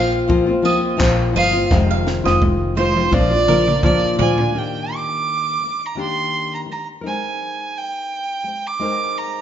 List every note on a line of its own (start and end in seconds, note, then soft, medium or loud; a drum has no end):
0.00 0.96 A#1 loud
0.00 0.27 F3 medium
0.00 0.28 A#3 medium
0.00 0.28 C4 medium
0.00 0.29 F4 medium
0.00 0.11 F5 loud
0.00 0.28 F5 medium
0.28 0.48 A#2 medium
0.28 0.49 F3 medium
0.28 0.48 A#3 medium
0.28 0.47 C4 medium
0.28 0.45 F4 medium
0.28 kick loud
0.47 0.62 A#3 medium
0.47 0.63 C4 medium
0.47 0.64 F4 medium
0.62 0.96 F3 medium
0.62 0.97 A#3 medium
0.62 0.97 C4 medium
0.62 0.97 F4 medium
0.62 0.99 D#5 medium
0.62 tambourine medium
0.97 1.33 A#1 medium
0.97 1.34 A#2 medium
0.97 1.32 F3 medium
0.97 1.33 A#3 medium
0.97 1.34 C4 medium
0.97 1.35 F4 loud
0.97 kick loud
0.97 clap loud
1.33 1.68 G1 medium
1.33 1.54 F3 medium
1.33 1.55 A#3 medium
1.33 1.54 C4 medium
1.33 1.52 F4 medium
1.33 1.54 D#5 medium
1.33 1.69 F5 loud
1.33 tambourine medium
1.53 1.71 A#3 soft
1.53 1.71 C4 soft
1.53 1.70 F4 medium
1.70 2.22 F1 loud
1.70 2.26 F2 medium
1.70 2.26 C3 medium
1.70 2.26 D#3 medium
1.70 2.25 G#3 medium
1.70 2.24 C4 medium
1.70 2.23 F4 medium
1.70 kick loud
1.70 snare medium
1.91 2.06 F5 medium
2.07 snare medium
2.24 2.40 F1 medium
2.24 2.74 D#3 medium
2.24 2.76 G#3 medium
2.24 2.76 C4 medium
2.24 2.76 F4 medium
2.24 2.41 D#5 medium
2.24 snare medium
2.42 3.09 F1 medium
2.42 kick loud
2.42 high tom medium
2.75 2.96 D#3 medium
2.75 2.97 G#3 medium
2.75 2.96 C4 medium
2.75 2.94 F4 medium
2.75 3.11 C5 medium
2.75 3.16 C5 medium
2.75 high tom medium
2.95 3.11 D#3 soft
2.95 3.12 G#3 soft
2.95 3.12 C4 soft
2.95 3.12 F4 medium
2.95 mid tom medium
3.11 3.83 A#1 medium
3.11 3.32 A#2 medium
3.11 3.31 F3 medium
3.11 3.32 A#3 medium
3.11 3.32 D4 medium
3.11 3.31 F4 medium
3.11 3.84 D5 loud
3.11 kick loud
3.11 mid tom medium
3.32 3.47 A#3 soft
3.32 3.49 D4 soft
3.32 3.48 F4 medium
3.48 3.67 F3 medium
3.48 3.68 A#3 medium
3.48 3.67 D4 medium
3.48 3.66 F4 medium
3.48 3.82 A#4 medium
3.48 mid tom medium
3.67 3.83 A#3 soft
3.67 3.83 D4 soft
3.67 3.83 F4 soft
3.67 mid tom medium
3.83 4.16 G1 medium
3.83 4.19 A#2 medium
3.83 4.17 F3 medium
3.83 4.18 A#3 medium
3.83 4.19 D4 medium
3.83 4.20 F4 medium
3.83 4.02 A#4 medium
3.83 4.17 D5 medium
3.83 kick loud
3.83 mid tom loud
4.18 4.52 D2 medium
4.18 4.38 F3 medium
4.18 4.39 A#3 medium
4.18 4.38 D4 medium
4.18 4.37 F4 medium
4.18 4.38 D5 medium
4.18 4.60 G#5 medium
4.18 floor tom loud
4.38 4.53 A#3 soft
4.38 4.54 D4 medium
4.38 4.54 F4 soft
4.38 floor tom medium
4.54 5.59 D#3 medium
4.54 5.63 A#3 medium
4.54 5.61 D4 medium
4.54 5.62 G4 medium
4.58 4.96 G5 medium
4.95 5.88 D6 medium
5.60 5.89 D#3 soft
5.60 5.91 A#3 soft
5.86 5.99 A#5 medium
5.95 6.66 D#3 medium
5.95 6.69 A#3 medium
5.95 6.68 D4 medium
5.95 6.68 G4 medium
6.01 6.50 C6 medium
6.54 6.61 A#5 medium
6.66 6.96 D#3 soft
6.66 6.98 A#3 soft
6.71 6.87 A#5 medium
7.01 8.46 C4 soft
7.01 8.81 D#4 soft
7.01 8.47 A#4 medium
7.07 8.43 G#3 soft
7.07 7.79 G#5 medium
7.78 8.68 G5 medium
8.44 8.74 G#3 soft
8.44 8.75 C4 soft
8.67 9.19 D6 medium
8.79 9.41 G#3 medium
8.79 9.41 C4 medium
8.79 9.41 D#4 medium
8.79 9.41 A#4 medium
9.18 9.41 A#5 medium